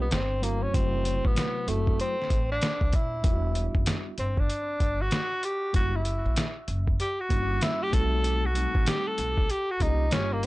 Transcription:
0.01 B3
0.11 G1 C4, snare, closed hi-hat
0.40 F#3 A3 A#3 C4 E4 F#4, closed hi-hat
0.62 C#4
0.72 F#1 C3 F#3 A3 C4 E4 F#4, kick, closed hi-hat
1.05 closed hi-hat
1.25 A1 B3, kick
1.36 snare, closed hi-hat
1.66 F#1 F#3 A3 C4 E4 F#4, closed hi-hat
1.87 kick
2.00 C4, closed hi-hat
2.22 snare
2.30 A1, kick, closed hi-hat
2.52 D4
2.61 snare, closed hi-hat
2.81 C2, kick
2.93 D#1 E4, kick, closed hi-hat
3.23 E1 G3 B3 D4 E4 F4, kick, closed hi-hat
3.33 F#4
3.55 closed hi-hat
3.75 F#1, kick
3.86 snare, closed hi-hat
4.18 G1 C4, closed hi-hat
4.37 D4, kick
4.50 closed hi-hat
4.80 G1, kick, closed hi-hat
5.02 F#4
5.11 snare, closed hi-hat
5.43 G4, closed hi-hat
5.73 F#1 G3 A#3 C#4 E4 F#4, kick, closed hi-hat
5.96 E4
6.05 closed hi-hat
6.26 A#1
6.36 snare, closed hi-hat
6.68 F#1, closed hi-hat
6.88 kick
7.00 G4, closed hi-hat
7.20 F#4
7.29 G1 G3 A#3 C#4 E4 F#4, kick, closed hi-hat
7.61 E4, snare, closed hi-hat
7.83 G4
7.91 B1 G3 A3 C4 D#4 F#4 A4, kick, closed hi-hat
8.24 closed hi-hat
8.45 F#4
8.54 G3 A3 C4 D#4 F#4, closed hi-hat
8.75 A1, kick
8.86 G4, snare, closed hi-hat
9.07 A4
9.18 B1, closed hi-hat
9.38 kick
9.50 G4, closed hi-hat
9.71 F#4
9.80 C2 G3 A#3 C#4 D#4 F4 G4, kick, closed hi-hat
10.11 G1 G3 A#3 C#4 F4 G4, snare, closed hi-hat
10.33 A#3
10.43 closed hi-hat

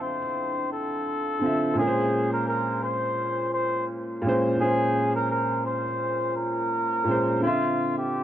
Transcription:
Already playing: D3 C4 E4 F4 F5 G5
0.02 C5
0.72 A4
1.39 D3 C4
1.43 F4 E5
1.74 A#2 G#3
1.78 C#4 G#4 A#4
1.87 C5
2.33 A#4
2.48 A#4
2.84 C5
3.54 C5
4.22 A#2 G#3
4.26 C#4 C5
4.57 A#2 G#3 G#4
4.62 C#4 C5
5.15 A#4
5.31 A#4
5.66 C5
6.37 A#4
7.04 A#2 G#3
7.09 C#4 C5
7.40 D3 C4 F4
7.44 F4 E5
7.98 G4

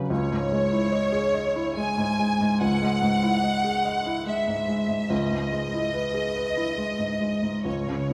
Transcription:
Already playing: C#3 F#3 D#4 F#4 B4
0.10 C#2 C#5
0.31 G#2
0.52 G#3
0.72 E4
0.92 D#5
1.12 G#4
1.34 D#5
1.56 E4
1.77 G#3 G#5
1.98 G#2
2.19 G#3
2.41 G#2
2.61 C#2 F#5
2.82 G#3
3.02 G#2
3.23 E4
3.44 D#5
3.64 G#4
3.85 D#5
4.06 E4
4.26 G#3 E5
4.48 G#2
4.68 G#3
4.89 G#2
5.10 C#2 D#5
5.31 G#2
5.52 G#3
5.74 E4
5.94 B4
6.14 G#4
6.36 B4
6.57 E4
6.78 G#3
6.99 G#2
7.20 G#3
7.43 G#2
7.65 C#2 C#5
7.88 C#3

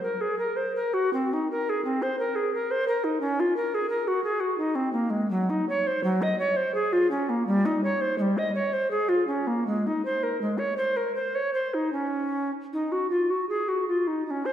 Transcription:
0.03 A#4
0.21 G#4
0.39 A#4
0.56 C5
0.76 A#4
0.94 F#4
1.13 C4
1.33 D#4
1.51 A#4
1.70 G#4
1.85 C4
2.02 C5
2.19 A#4
2.36 G#4
2.54 A#4
2.71 C5
2.88 A#4
3.04 D#4
3.21 C#4
3.40 F4
3.57 A#4
3.75 G#4
3.90 A#4
4.08 F#4
4.24 G#4
4.40 F#4
4.58 D#4
4.75 C4
4.93 A#3
5.10 G#3
5.31 F#3
5.50 D#4
5.69 C#5
5.87 C5
6.04 F#3
6.22 D#5
6.39 C#5
6.57 C5
6.75 G#4
6.93 F4
7.11 C#4
7.29 A#3
7.47 G3
7.66 D#4
7.84 C#5
8.01 C5
8.18 G3 G#3
8.38 D#5
8.55 C#5
8.73 C5
8.91 G#4
9.09 F4
9.27 C#4
9.47 A#3
9.67 G#3
9.87 D#4
10.05 C5
10.23 A#4
10.41 G#3
10.58 C#5
10.77 C5
10.97 A#4
11.15 C5
11.35 C#5
11.54 C5
11.74 D#4
11.93 C#4
12.73 D#4
12.92 F#4
13.10 F4
13.30 F#4
13.49 G#4
13.68 F#4
13.88 F4
14.07 D#4
14.27 D#4
14.31 C#4
14.45 C5

